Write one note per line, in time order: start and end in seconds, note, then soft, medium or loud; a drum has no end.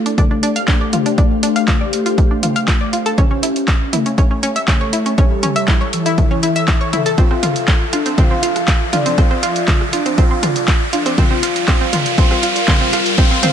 0.00 0.58 A3 medium
0.00 3.18 D4 medium
0.00 4.69 G4 medium
0.00 0.21 A4 medium
0.00 3.18 C5 medium
0.00 3.18 F5 medium
0.00 riser medium
0.06 0.15 D4 medium
0.06 closed hi-hat soft
0.18 0.28 D4 loud
0.18 kick loud
0.18 closed hi-hat soft
0.18 mid tom medium
0.31 0.37 D4 medium
0.43 0.49 D4 loud
0.43 closed hi-hat loud
0.56 0.62 F5 loud
0.56 closed hi-hat soft
0.68 1.14 A3 medium
0.68 0.78 D4 loud
0.68 kick loud
0.68 clap loud
0.68 closed hi-hat soft
0.81 0.92 D5 medium
0.93 0.99 F4 medium
0.93 closed hi-hat medium
0.93 mid tom medium
1.06 1.15 D4 medium
1.06 closed hi-hat soft
1.18 1.83 A3 medium
1.18 1.28 D4 loud
1.18 kick loud
1.18 closed hi-hat soft
1.43 1.49 D4 loud
1.43 closed hi-hat loud
1.56 1.62 F5 loud
1.56 closed hi-hat soft
1.68 1.78 F4 medium
1.68 kick loud
1.68 clap loud
1.68 closed hi-hat soft
1.68 mid tom medium
1.81 1.92 D5 medium
1.93 3.19 A3 loud
1.93 closed hi-hat medium
2.06 2.17 F4 loud
2.06 closed hi-hat soft
2.18 kick loud
2.18 closed hi-hat soft
2.31 2.40 D4 medium
2.43 2.49 F4 medium
2.43 closed hi-hat loud
2.43 mid tom medium
2.56 2.62 F5 loud
2.56 closed hi-hat soft
2.68 2.74 F4 medium
2.68 kick loud
2.68 clap loud
2.68 closed hi-hat soft
2.81 2.92 D5 medium
2.93 2.99 F4 medium
2.93 closed hi-hat medium
3.06 3.12 A4 loud
3.06 closed hi-hat soft
3.18 3.28 C#4 loud
3.18 3.95 C#4 loud
3.18 11.18 E5 medium
3.18 kick loud
3.18 closed hi-hat soft
3.18 mid tom medium
3.31 3.37 C#4 medium
3.43 3.53 E4 medium
3.43 closed hi-hat loud
3.56 11.18 A4 medium
3.56 7.18 C#5 medium
3.56 closed hi-hat soft
3.68 kick loud
3.68 clap loud
3.68 closed hi-hat soft
3.93 4.58 A3 loud
3.93 3.99 E4 medium
3.93 closed hi-hat medium
3.93 mid tom medium
4.06 4.15 C#4 medium
4.06 closed hi-hat soft
4.18 4.28 C#4 loud
4.18 kick loud
4.18 closed hi-hat soft
4.31 4.37 C#4 medium
4.43 4.49 C#4 loud
4.43 closed hi-hat loud
4.56 4.62 E5 loud
4.56 closed hi-hat soft
4.68 5.14 A3 medium
4.68 4.78 C#4 loud
4.68 kick loud
4.68 clap loud
4.68 closed hi-hat soft
4.68 mid tom medium
4.81 4.92 C#5 medium
4.93 4.99 E4 medium
4.93 closed hi-hat medium
5.06 5.15 C#4 medium
5.06 closed hi-hat soft
5.18 5.83 G3 medium
5.18 5.28 C#4 loud
5.18 kick loud
5.18 closed hi-hat soft
5.43 5.49 C#4 loud
5.43 closed hi-hat loud
5.43 mid tom medium
5.56 5.62 E5 loud
5.56 closed hi-hat soft
5.68 5.78 E4 medium
5.68 kick loud
5.68 clap loud
5.68 closed hi-hat soft
5.81 5.92 C#5 medium
5.93 7.17 E3 loud
5.93 closed hi-hat medium
6.06 6.17 E4 loud
6.06 closed hi-hat soft
6.18 kick loud
6.18 closed hi-hat soft
6.18 mid tom medium
6.31 6.40 C#4 medium
6.43 6.49 E4 medium
6.43 closed hi-hat loud
6.56 6.62 E5 loud
6.56 closed hi-hat soft
6.68 6.74 E4 medium
6.68 kick loud
6.68 clap loud
6.68 closed hi-hat soft
6.81 6.92 C#5 medium
6.93 6.99 E4 medium
6.93 closed hi-hat medium
6.93 mid tom medium
7.06 7.12 A4 loud
7.06 closed hi-hat soft
7.18 11.18 F3 medium
7.18 7.28 C4 medium
7.18 7.83 F4 medium
7.18 kick loud
7.18 closed hi-hat soft
7.31 7.37 C4 medium
7.31 cross-stick medium
7.43 7.53 F4 medium
7.43 closed hi-hat loud
7.43 mid tom medium
7.56 closed hi-hat soft
7.68 kick loud
7.68 clap loud
7.68 closed hi-hat soft
7.82 13.53 D5 medium
7.93 8.16 D4 medium
7.93 7.99 F4 medium
7.93 cross-stick medium
7.93 closed hi-hat medium
8.06 8.15 C4 medium
8.06 closed hi-hat soft
8.18 8.28 C4 loud
8.18 8.83 F4 loud
8.18 kick loud
8.18 closed hi-hat soft
8.18 mid tom medium
8.31 8.37 C4 medium
8.43 8.53 F4 medium
8.43 closed hi-hat loud
8.56 cross-stick medium
8.56 closed hi-hat soft
8.68 kick loud
8.68 clap loud
8.68 closed hi-hat soft
8.93 9.16 D4 medium
8.93 8.99 F4 medium
8.93 closed hi-hat medium
8.93 mid tom medium
9.06 9.15 C4 medium
9.06 closed hi-hat soft
9.18 9.28 C4 loud
9.18 9.83 F4 medium
9.18 kick loud
9.18 cross-stick medium
9.18 closed hi-hat soft
9.31 9.37 C4 medium
9.43 9.53 F4 medium
9.43 closed hi-hat loud
9.56 closed hi-hat soft
9.68 kick loud
9.68 clap loud
9.68 closed hi-hat soft
9.68 mid tom loud
9.81 cross-stick medium
9.93 10.16 D4 medium
9.93 9.99 F4 medium
9.93 closed hi-hat medium
10.06 10.15 C4 medium
10.06 closed hi-hat soft
10.18 10.28 C4 loud
10.18 10.83 F4 loud
10.18 kick loud
10.18 closed hi-hat soft
10.31 10.37 C4 medium
10.43 10.53 F4 medium
10.43 cross-stick medium
10.43 closed hi-hat loud
10.43 mid tom medium
10.56 closed hi-hat soft
10.68 kick loud
10.68 clap loud
10.68 closed hi-hat soft
10.93 11.16 D4 medium
10.93 10.99 F4 medium
10.93 closed hi-hat medium
11.06 11.15 C4 medium
11.06 cross-stick medium
11.06 closed hi-hat soft
11.18 13.53 G3 medium
11.18 11.28 C4 loud
11.18 11.66 F4 loud
11.18 kick loud
11.18 closed hi-hat soft
11.18 mid tom loud
11.31 11.37 C4 medium
11.31 13.53 A#4 medium
11.35 13.53 F4 medium
11.43 11.53 F4 medium
11.43 closed hi-hat loud
11.56 closed hi-hat soft
11.68 11.78 C4 loud
11.68 12.16 F4 loud
11.68 kick loud
11.68 cross-stick medium
11.68 clap loud
11.68 closed hi-hat soft
11.81 11.87 C4 medium
11.93 12.03 F4 medium
11.93 closed hi-hat medium
11.93 mid tom medium
12.06 closed hi-hat soft
12.18 12.28 C4 loud
12.18 12.66 F4 loud
12.18 kick loud
12.18 closed hi-hat soft
12.31 12.37 C4 medium
12.31 cross-stick medium
12.43 12.53 F4 medium
12.43 closed hi-hat loud
12.56 closed hi-hat soft
12.68 12.78 C4 loud
12.68 13.16 F4 loud
12.68 kick loud
12.68 clap loud
12.68 closed hi-hat soft
12.68 mid tom loud
12.81 12.87 C4 medium
12.93 13.03 F4 medium
12.93 cross-stick medium
12.93 closed hi-hat medium
13.06 closed hi-hat soft
13.18 13.28 C4 loud
13.18 13.41 F4 loud
13.18 kick loud
13.18 closed hi-hat soft
13.31 13.37 C4 medium
13.43 13.53 C4 loud
13.43 13.53 F4 loud
13.43 closed hi-hat loud
13.43 mid tom loud